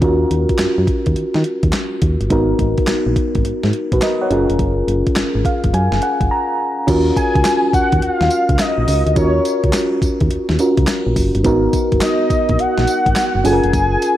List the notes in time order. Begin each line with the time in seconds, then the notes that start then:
0.01 D#2 C#4 F4 F#4 A#4, kick, closed hi-hat
0.31 D#2, closed hi-hat
0.49 kick, closed hi-hat
0.58 F#2, snare, clap, closed hi-hat
0.78 F#2
0.87 kick, closed hi-hat
1.06 D#2, kick, closed hi-hat
1.16 D#3, closed hi-hat
1.34 D#3, snare
1.44 closed hi-hat
1.63 D#2, kick, closed hi-hat
1.73 snare, clap, closed hi-hat
2.02 D#2, kick, closed hi-hat
2.21 G1, closed hi-hat
2.30 G#1 B3 D#4 F#4 A#4, kick, closed hi-hat
2.59 G#1, kick, closed hi-hat
2.78 kick, closed hi-hat
2.87 A#1, snare, clap, closed hi-hat
3.07 A#1
3.16 kick, closed hi-hat
3.35 G#1, kick, closed hi-hat
3.45 G#2, closed hi-hat
3.63 G#2, snare
3.73 closed hi-hat
3.92 A#1 F#4 B4, kick, closed hi-hat
4.02 A#4 D#5, snare, clap, closed hi-hat
4.21 C#5 F#5
4.30 F#1 C#4 F4 G#4 A#4, closed hi-hat
4.50 F1, closed hi-hat
4.59 F#1, kick, closed hi-hat
4.88 F#1, closed hi-hat
5.07 kick, closed hi-hat
5.16 G#1, snare, clap, closed hi-hat
5.35 G#1
5.45 F5, kick, closed hi-hat
5.64 F#1, kick, closed hi-hat
5.74 F#2 G#5, closed hi-hat
5.92 F#1, snare
6.02 F#5, closed hi-hat
6.21 F#1, kick, closed hi-hat
6.31 A#5
6.87 D#2 C#4 F4 F#4 A#4, kick, closed hi-hat, crash, tambourine
7.17 G#5, kick, closed hi-hat, tambourine
7.35 C#2, kick, closed hi-hat
7.45 snare, clap, closed hi-hat, tambourine
7.73 D#2 F#5, kick, closed hi-hat, tambourine
7.92 D#2, kick, closed hi-hat
8.02 D#2 F5, closed hi-hat
8.21 D#2, snare
8.30 closed hi-hat, tambourine
8.49 C#2, kick, closed hi-hat
8.59 D#5, snare, clap, closed hi-hat, tambourine
8.78 A#1
8.88 C#2, open hi-hat, tambourine
9.07 D2, closed hi-hat
9.16 D#2 C#4 F4 F#4 A#4 C#5, kick, closed hi-hat, tambourine
9.45 closed hi-hat, tambourine
9.64 C#2, kick, closed hi-hat
9.73 snare, clap, closed hi-hat, tambourine
10.02 D#2, kick, closed hi-hat, tambourine
10.20 D#2, kick, closed hi-hat
10.31 D#2, closed hi-hat
10.49 D#2, snare
10.59 C#4 F4 F#4 A#4, closed hi-hat, tambourine
10.77 C#2, kick, closed hi-hat
10.87 snare, clap, closed hi-hat, tambourine
11.07 A#1
11.16 F#1, kick, open hi-hat, tambourine
11.35 G1, closed hi-hat
11.44 G#1 B3 D#4 F#4 A#4, kick, closed hi-hat, tambourine
11.73 kick, closed hi-hat, tambourine
11.92 F#1, kick, closed hi-hat
12.01 D#5, snare, clap, closed hi-hat, tambourine
12.30 A#1, kick, closed hi-hat, tambourine
12.49 A#1, kick, closed hi-hat
12.59 F#5, closed hi-hat
12.78 A#1, snare
12.87 closed hi-hat, tambourine
13.06 G#1, kick, closed hi-hat
13.16 snare, clap, closed hi-hat, tambourine
13.35 F#1
13.44 F#1 C#4 F4 G#4 A4 G#5, open hi-hat, tambourine
13.53 A#4
13.64 F1, closed hi-hat
13.73 F#1, kick, closed hi-hat, tambourine
14.02 closed hi-hat, tambourine